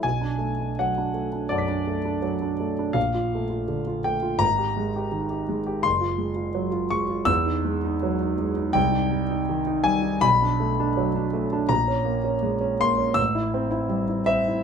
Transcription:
0.03 B1 G#5
0.21 D4
0.39 A3
0.60 D4
0.79 F#3 F#5
0.98 D4
1.14 A3
1.32 D4
1.49 F#2 D5 F#5 A5
1.55 D6 B6
1.68 D4
1.87 A3
2.05 D4
2.22 F#3
2.42 D4
2.60 A3
2.79 D4
2.93 A#1 F5
3.14 F4
3.35 A3
3.50 F4
3.68 D3
3.87 F4
4.04 A3 G5
4.23 F4
4.39 G#1 A#5
4.58 G4
4.77 G#3
4.96 G4
5.12 D#3
5.30 G4
5.49 G#3
5.66 G4
5.83 F#1 C6
6.00 F4
6.18 G#3
6.36 F4
6.55 F#3
6.71 F4
6.90 G#3 C#6
7.09 F4
7.25 E2 E6
7.46 D#4
7.65 G#3
7.84 D#4
8.03 F#3
8.21 D#4
8.38 G#3
8.56 D#4
8.73 C2 G5
8.92 D#4
9.11 G3
9.30 D#4
9.49 D#3
9.67 D#4
9.84 G3 G#5
10.02 D#4
10.21 B1 B5
10.42 D4
10.60 A3
10.80 D4
10.97 F#3
11.16 D4
11.33 A3
11.53 D4
11.69 A#1 A#5
11.88 C#4
12.05 A#3
12.24 C#4
12.43 G#3
12.61 C#4
12.80 A#3 C6
12.98 C#4
13.14 A1 E6
13.35 E4
13.54 C4
13.71 E4
13.89 G3
14.08 E4
14.26 C4 E5
14.48 E4

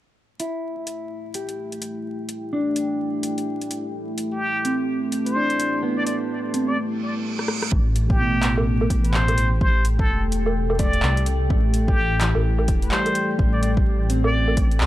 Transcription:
0.16 A3
0.40 E4, closed hi-hat
0.56 E4
0.87 closed hi-hat
0.92 G4
1.34 G4, closed hi-hat
1.48 G5, closed hi-hat
1.72 closed hi-hat
1.82 closed hi-hat
2.29 closed hi-hat
2.53 D4
2.76 closed hi-hat
3.23 closed hi-hat
3.38 closed hi-hat
3.62 closed hi-hat
3.71 closed hi-hat
4.18 closed hi-hat
4.32 G4
4.51 A5
4.65 C4, closed hi-hat
5.12 closed hi-hat
5.26 C5, closed hi-hat
5.36 D4
5.50 closed hi-hat
5.60 closed hi-hat
5.83 B3
5.97 D5
6.06 D5, closed hi-hat
6.54 C4, closed hi-hat
6.67 D5
6.78 reverse cymbal
7.39 cross-stick
7.48 cross-stick
7.62 cross-stick
7.72 A1, kick
7.93 A4, closed hi-hat
8.10 G4, kick
8.19 B2
8.28 G5
8.43 clap, closed hi-hat
8.57 low woodblock
8.81 low woodblock
8.90 A1, kick, closed hi-hat
9.04 C5, closed hi-hat
9.14 clap
9.28 closed hi-hat, low woodblock
9.38 A1, closed hi-hat
9.61 A1 C5, kick
9.85 closed hi-hat
9.99 A4, kick
10.09 E1
10.32 closed hi-hat
10.46 low woodblock
10.70 low woodblock
10.79 A3 D5, kick, closed hi-hat
10.93 closed hi-hat
11.03 C2, clap
11.17 closed hi-hat
11.26 closed hi-hat
11.50 A1 A3, kick
11.74 closed hi-hat
11.88 G4, kick
12.21 E3, clap, closed hi-hat
12.35 A1, low woodblock
12.59 low woodblock
12.68 E1, kick, closed hi-hat
12.82 C5, closed hi-hat
12.91 G3, clap
13.06 closed hi-hat, low woodblock
13.15 closed hi-hat
13.39 A1, kick
13.53 D5
13.62 D5, closed hi-hat
13.77 kick
14.10 C4, closed hi-hat
14.24 D5, low woodblock
14.48 low woodblock
14.57 kick, closed hi-hat
14.71 closed hi-hat
14.80 D2, clap

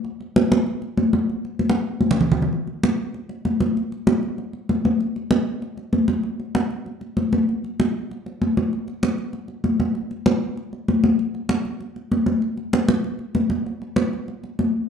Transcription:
0.04 high conga
0.20 high conga
0.36 high conga
0.52 high conga
0.67 high conga
0.82 high conga
0.97 high conga
1.13 high conga
1.30 high conga
1.45 high conga
1.59 high conga
1.70 high conga
2.01 high conga
2.11 low conga
2.21 low conga
2.32 low conga
2.42 low conga
2.53 high conga
2.67 high conga
2.83 high conga
3.14 high conga
3.29 high conga
3.45 high conga
3.60 high conga
3.77 high conga
3.92 high conga
4.07 high conga
4.23 high conga
4.38 high conga
4.53 high conga
4.69 high conga
4.85 high conga
5.01 high conga
5.16 high conga
5.31 high conga
5.62 high conga
5.77 high conga
5.93 high conga
6.08 high conga
6.23 high conga
6.40 high conga
6.55 high conga
6.71 high conga
6.86 high conga
7.01 high conga
7.17 high conga
7.33 high conga
7.49 high conga
7.64 high conga
7.80 high conga
8.11 high conga
8.26 high conga
8.42 high conga
8.57 high conga
8.73 high conga
8.88 high conga
9.03 high conga
9.18 high conga
9.33 high conga
9.48 high conga
9.64 high conga
9.80 high conga
9.95 high conga
10.11 high conga
10.26 high conga
10.57 high conga
10.73 high conga
10.88 high conga
11.04 high conga
11.19 high conga
11.34 high conga
11.49 high conga
11.65 high conga
11.80 high conga
11.96 high conga
12.12 high conga
12.26 high conga
12.42 high conga
12.57 high conga
12.73 high conga
12.88 high conga
13.04 high conga
13.19 high conga
13.35 high conga
13.50 high conga
13.66 high conga
13.82 high conga
13.96 high conga
14.13 high conga
14.28 high conga
14.44 high conga
14.59 high conga

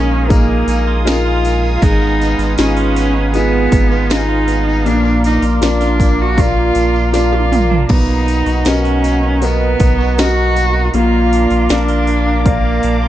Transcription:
Already playing: A#1 A#2 G#3 A#3 C#4 D#4 F4 G#4 A#4 F5 G#5 D#6
0.11 D#4
0.29 A#2 A#3 D#4 G#4 A#4, kick, open hi-hat, tambourine
0.49 G#3
0.67 A#1 D#4, open hi-hat, tambourine
0.87 F4
1.05 D#4 F4 G#4 A#4, snare, open hi-hat, tambourine
1.26 F4
1.45 G#3, open hi-hat, tambourine
1.64 D#4, tambourine
1.75 F4
1.81 G#1 G#3 D#4 B4 F5, kick, open hi-hat, tambourine
2.01 B3, tambourine
2.20 D#4, open hi-hat, tambourine
2.38 G#1 F4, open hi-hat, tambourine
2.58 G#1 C#4 D#4 F4 G#4, snare, open hi-hat, tambourine
2.77 F4, open hi-hat
2.96 B3, open hi-hat, tambourine
3.14 D#4
3.33 G#3 B3 D#4 F4 G#4, open hi-hat, tambourine
3.53 B3
3.72 G#1 D#4, kick, open hi-hat, tambourine
3.91 F4, tambourine
4.09 D#4 F4 G#4, snare, open hi-hat, tambourine
4.29 F4
4.48 B3, open hi-hat, tambourine
4.66 D#4, tambourine
4.85 A#1 A#2 A#3 D4 D5 A#5 D6, open hi-hat, tambourine
5.05 A#3, tambourine
5.24 D#4, open hi-hat, tambourine
5.42 A#1 F4, open hi-hat, tambourine
5.61 A#1 D4 F4 A#4 D5, snare, open hi-hat, tambourine
5.80 F4, snare, open hi-hat
5.99 A#3, kick, open hi-hat, tambourine
6.19 D4 F#4
6.38 A#2 F4 A#4 D5, kick, open hi-hat, tambourine
6.56 A#3
6.75 A#1 D4, open hi-hat, tambourine
6.94 F4, tambourine
7.12 D4 F4 A#4 D5, snare, open hi-hat, tambourine
7.32 F4, high tom
7.51 A#3, mid tom, open hi-hat, tambourine
7.70 D4, floor tom
7.89 B1 B2 B3 D#4 D#5 F#5, kick, crash, tambourine
8.08 A#3
8.27 D#4, open hi-hat, tambourine
8.46 B1 F#4, open hi-hat, tambourine
8.65 B1 C#4 D#4 F#4 A#4 D#5, snare, open hi-hat, tambourine
8.84 F#4, open hi-hat
9.03 A#3, open hi-hat, tambourine
9.23 D#4
9.41 B2 B3 A#4 B4 D#5, open hi-hat, tambourine
9.79 B1 D#4, kick, open hi-hat, tambourine
9.98 F#4, tambourine
10.18 D#4 F#4 A#4 D#5, snare, open hi-hat, tambourine
10.37 F#4
10.56 A#3, open hi-hat, tambourine
10.75 D#4
10.94 A#1 A#2 A#3 F4 D5 F5 D6, open hi-hat
11.13 A#3
11.32 D4, open hi-hat
11.50 A#1 F4, open hi-hat
11.69 A#1 D4 A#4 D5 F5, snare, open hi-hat
11.88 F4, open hi-hat
12.07 A#3, open hi-hat
12.28 D4
12.45 A#2 A#3 A#4 D5 F5, kick, open hi-hat
12.65 A#3
12.83 A#1 D4, open hi-hat
13.03 F4

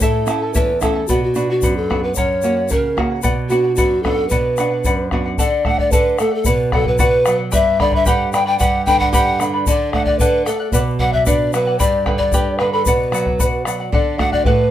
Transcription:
0.00 A2 E4 A4 C#5 E5 A5, bombo low
0.26 A3 C#4 E4 A4 E5 A5, bombo rim, shaker
0.42 E4 A4 A5
0.54 E2 E4 A4 B4 C#5 E5 A5, bombo low, shaker
0.81 A3 C#4 E4 A4 E5 A5, bombo rim, bombo low, shaker
0.95 E4 A4 A5
1.08 B2 F#4 B4 D5 F#5, bombo low, shaker
1.24 F#4
1.35 B3 D4 F#4 B4 D5 F#5, shaker
1.50 F#4 D5 F#5
1.62 F#2 B4 D5 F#5, bombo low, shaker
1.77 A4
1.90 B3 D4 F#4 B4 D5 F#5, bombo rim, bombo low
2.03 B4 D5 F#5
2.15 F#2 A#4 C#5 F#5, bombo low, shaker
2.42 A#3 C#4 F#4 A#4 C#5 F#5, shaker
2.57 C#5 F#5
2.69 C#3 A#4 C#5 F#5, bombo low, shaker
2.97 A#3 C#4 F#4 A#4 C#5 F#5, bombo rim, bombo low
3.10 C#5 F#5
3.22 B2 B4 D5 F#5, bombo low, shaker
3.49 B3 D4 F#4 B4 D5 F#5, shaker
3.64 D5 F#5
3.76 F#2 F#4 B4 D5 F#5, bombo low, shaker
4.03 B3 D4 F#4 A4 B4 D5 F#5, bombo rim, bombo low
4.17 D5 F#5
4.29 B2 B4 D5 F#5, bombo low, shaker
4.57 B3 D4 F#4 B4 D5 F#5, bombo rim, shaker
4.71 D5 F#5
4.84 F#2 B4 D5 F#5, bombo low, shaker
5.11 B3 D4 F#4 B4 D5 F#5, bombo rim, bombo low
5.26 D5 F#5
5.38 D3 A4 D5 F#5, bombo low, shaker
5.65 A3 A4 D5 F#5, bombo rim, bombo low
5.78 D5 F#5, bombo low
5.92 D3 A4 B4 D5 F#5, bombo low, shaker
6.18 A3 A4 D5 F#5, bombo rim, shaker
6.31 A4 D5 F#5
6.45 B2 B4 D5 F#5, bombo low, shaker
6.72 F#3 A4 B4 D5 F#5, bombo rim, bombo low
6.85 B4 D5 F#5, bombo low
6.99 F#4 B4 D5 F#5, bombo low, shaker
7.25 F#3 B4 D5 F#5, bombo rim, shaker
7.38 D5 F#5
7.51 G2 G4 B4 D5 E5 G5 B5, bombo low, shaker
7.79 D3 B4 D5 G5 B5, bombo rim, bombo low
7.92 B4 D5 E5 B5, bombo low
8.06 G4 B4 D5 F#5 G5 B5, bombo low, shaker
8.33 D3 B4 D5 G5 B5, bombo rim, shaker
8.46 B4 D5 G5 B5
8.59 G2 G4 B4 D5 F#5 G5 B5, bombo low, shaker
8.86 D3 B4 D5 G5 B5, bombo low, shaker
9.00 B4 D5 F#5 B5, bombo low
9.12 G4 B4 D5 F#5 G5 B5, bombo low, shaker
9.40 D3 B4 D5 G5 B5, bombo rim, shaker
9.53 B4 D5 B5
9.67 D3 A4 D5 F#5, bombo low, shaker
9.93 A3 A4 D5 F#5, bombo rim, bombo low
10.05 D5 F#5, bombo low
10.19 D3 A4 B4 D5 F#5, bombo low, shaker
10.46 A3 A4 D5 F#5, bombo rim, shaker
10.60 D5 F#5
10.72 B2 B4 D5 F#5, bombo low, shaker
10.99 F#3 B4 D5 F#5, bombo low
11.13 D5 E5 F#5, bombo low
11.26 D4 B4 D5 F#5, bombo low, shaker
11.53 F#3 B4 D5 F#5, bombo rim, shaker
11.67 D5 F#5
11.79 G2 G4 B4 D5 G5 B5, bombo low, shaker
12.06 D3 B4 D5 G5 B5, bombo rim, bombo low
12.18 B4 D5 B5, bombo low
12.32 G4 B4 D5 G5 B5, bombo low, shaker
12.59 D3 B4 D5 G5 B5, bombo rim
12.73 A4 B4 D5 B5
12.85 B2 B4 D5 F#5, bombo low, shaker
13.12 F#3 B4 D5 F#5, bombo rim, shaker
13.26 D5 F#5, bombo low
13.39 F#4 B4 D5 F#5, bombo low, shaker
13.65 F#3 B4 D5 F#5, bombo rim, shaker
13.80 D5 F#5
13.92 D3 A4 D5 F#5, bombo low
14.18 A3 D4 F#4 A4 D5 F#5, bombo rim, bombo low
14.32 D5 F#5, bombo low
14.45 A2 A4 B4 D5 F#5, bombo low

